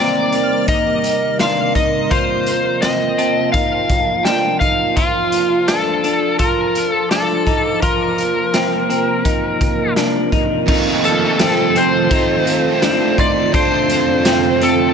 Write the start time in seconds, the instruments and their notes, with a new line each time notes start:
Already playing: ambient pad C3 D#3 G3 A#3 A#4, clean electric guitar C4, electric slide guitar D5, synth bell A#5
0.21 synth bell D6
0.32 clean electric guitar C4, closed hi-hat
0.43 synth bell F6
0.68 clean electric guitar D#4, electric slide guitar D#5, kick, closed hi-hat
1.04 closed hi-hat
1.39 clean electric guitar D4, electric slide guitar F5, synth bell C6, snare, closed hi-hat
1.75 clean electric guitar D#4, electric slide guitar D#5, kick, closed hi-hat
2.11 ambient pad F3 F4, clean electric guitar F4, electric slide guitar C5, kick, closed hi-hat
2.46 closed hi-hat
2.82 clean electric guitar C4, electric slide guitar D#5, snare, closed hi-hat
3.18 clean electric guitar C4, synth bell A5, closed hi-hat
3.52 clean electric guitar D#4, electric slide guitar F5, kick, closed hi-hat
3.89 kick, closed hi-hat
4.25 clean electric guitar D4, electric slide guitar G5, snare, closed hi-hat
4.60 clean electric guitar D#4, electric slide guitar F5, kick, closed hi-hat
4.96 electric slide guitar F4, clean electric guitar F4, ambient pad A5, kick, closed hi-hat
5.32 closed hi-hat
5.68 clean electric guitar D4, electric slide guitar A4, snare, closed hi-hat
6.04 clean electric guitar D4, closed hi-hat
6.39 clean electric guitar F4, electric slide guitar A#4, kick, closed hi-hat
6.75 closed hi-hat
6.91 electric slide guitar A4
7.11 clean electric guitar D4, electric slide guitar A4, synth bell D6, snare, closed hi-hat
7.47 clean electric guitar D#4, kick, closed hi-hat
7.82 ambient pad C3 A#3 A#4, clean electric guitar F4, electric slide guitar A#4, kick, closed hi-hat
8.18 closed hi-hat
8.54 clean electric guitar C4, snare, closed hi-hat
8.90 clean electric guitar C4, closed hi-hat
9.25 clean electric guitar D#4, kick, closed hi-hat
9.61 kick, closed hi-hat
9.96 clean electric guitar D4, snare, closed hi-hat
10.32 clean electric guitar D#4, kick, closed hi-hat
10.66 overdriven electric guitar F2 C3 D#3, ambient pad D#3 A3 C4 F4 A4, clean electric guitar D#4, kick, crash
10.71 overdriven electric guitar A3 C4 F4
11.04 electric slide guitar A4, synth bell A5, closed hi-hat
11.39 clean electric guitar C4, snare, closed hi-hat, tambourine
11.75 clean electric guitar C4, electric slide guitar C5, closed hi-hat
12.09 overdriven electric guitar D#3 A3, clean electric guitar D#4, kick, closed hi-hat
12.13 overdriven electric guitar C4 F4
12.45 overdriven electric guitar C4 F4, closed hi-hat
12.49 overdriven electric guitar D#3 A3
12.82 clean electric guitar D4, snare, closed hi-hat, tambourine
13.18 clean electric guitar D#4, electric slide guitar D5, synth bell C6, kick, closed hi-hat
13.51 overdriven electric guitar F2 C3 F3, ambient pad F2 D3 A4, clean electric guitar D4, electric slide guitar C5, kick, closed hi-hat
13.57 overdriven electric guitar A3 D4 F4
13.89 closed hi-hat
14.25 clean electric guitar C4, snare, closed hi-hat, tambourine
14.61 clean electric guitar C4, electric slide guitar A4, closed hi-hat